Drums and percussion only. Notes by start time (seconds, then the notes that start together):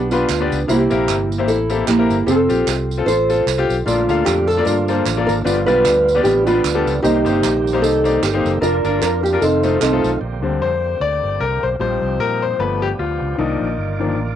0.11 tambourine
0.29 clap, tambourine
0.52 tambourine
0.69 tambourine
0.91 tambourine
1.09 clap, tambourine
1.32 tambourine
1.48 tambourine
1.70 tambourine
1.88 clap, tambourine
2.10 tambourine
2.28 tambourine
2.50 tambourine
2.68 clap, tambourine
2.91 tambourine
3.08 tambourine
3.30 tambourine
3.48 clap, tambourine
3.70 tambourine
3.88 tambourine
4.09 tambourine
4.27 clap, tambourine
4.50 tambourine
4.67 tambourine
4.88 tambourine
5.06 clap, tambourine
5.29 tambourine
5.47 tambourine
5.68 tambourine
5.85 clap, tambourine
6.08 tambourine
6.25 tambourine
6.47 tambourine
6.65 clap, tambourine
6.87 tambourine
7.05 tambourine
7.26 tambourine
7.44 clap, tambourine
7.67 tambourine
7.84 tambourine
8.05 tambourine
8.23 clap, tambourine
8.46 tambourine
8.63 tambourine
8.85 tambourine
9.02 clap, tambourine
9.25 tambourine
9.42 tambourine
9.63 tambourine
9.82 clap, tambourine
10.04 tambourine